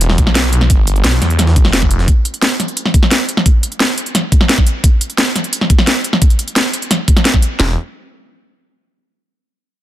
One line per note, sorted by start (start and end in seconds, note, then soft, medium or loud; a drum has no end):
0.00 0.17 E1 loud
0.00 closed hi-hat medium
0.09 snare medium
0.09 snare soft
0.18 0.69 B1 loud
0.18 kick loud
0.18 closed hi-hat medium
0.27 snare medium
0.35 snare loud
0.35 closed hi-hat medium
0.44 snare soft
0.53 closed hi-hat medium
0.61 snare medium
0.70 1.03 G1 loud
0.70 kick loud
0.70 closed hi-hat medium
0.87 closed hi-hat medium
0.96 closed hi-hat soft
1.04 1.20 B1 loud
1.04 snare loud
1.04 closed hi-hat medium
1.13 snare soft
1.22 1.72 E2 loud
1.22 snare soft
1.22 closed hi-hat medium
1.30 closed hi-hat soft
1.39 snare soft
1.39 closed hi-hat medium
1.47 snare medium
1.56 kick loud
1.56 closed hi-hat medium
1.65 snare soft
1.65 snare medium
1.73 2.06 F1 loud
1.73 snare loud
1.73 closed hi-hat medium
1.82 kick medium
1.82 snare soft
1.91 closed hi-hat medium
1.99 snare soft
2.08 kick loud
2.08 closed hi-hat medium
2.25 closed hi-hat medium
2.34 closed hi-hat soft
2.42 snare loud
2.42 closed hi-hat medium
2.60 snare soft
2.60 closed hi-hat medium
2.68 closed hi-hat soft
2.77 closed hi-hat medium
2.86 snare soft
2.94 kick loud
2.94 closed hi-hat medium
3.03 snare medium
3.11 snare loud
3.11 closed hi-hat medium
3.29 closed hi-hat medium
3.37 snare medium
3.46 kick loud
3.46 closed hi-hat medium
3.63 closed hi-hat medium
3.72 closed hi-hat soft
3.80 snare loud
3.80 closed hi-hat medium
3.98 closed hi-hat medium
4.06 closed hi-hat soft
4.15 snare soft
4.15 closed hi-hat medium
4.32 kick loud
4.32 closed hi-hat medium
4.41 snare soft
4.49 snare loud
4.49 closed hi-hat medium
4.58 kick medium
4.58 snare soft
4.67 closed hi-hat medium
4.84 kick loud
4.84 closed hi-hat loud
5.01 closed hi-hat medium
5.10 closed hi-hat soft
5.18 snare loud
5.18 closed hi-hat loud
5.36 snare soft
5.36 closed hi-hat medium
5.44 closed hi-hat soft
5.53 closed hi-hat loud
5.61 snare soft
5.70 kick loud
5.70 closed hi-hat medium
5.79 snare medium
5.87 snare loud
5.87 closed hi-hat loud
6.04 closed hi-hat medium
6.13 snare medium
6.22 kick loud
6.22 closed hi-hat loud
6.30 closed hi-hat soft
6.39 closed hi-hat medium
6.48 closed hi-hat soft
6.56 snare loud
6.56 closed hi-hat loud
6.73 closed hi-hat medium
6.82 closed hi-hat soft
6.91 snare soft
6.91 closed hi-hat loud
7.08 kick loud
7.08 closed hi-hat medium
7.17 snare medium
7.17 closed hi-hat soft
7.25 snare loud
7.25 closed hi-hat loud
7.34 kick medium
7.34 snare soft
7.42 closed hi-hat medium
7.60 7.76 E1 loud
7.60 snare loud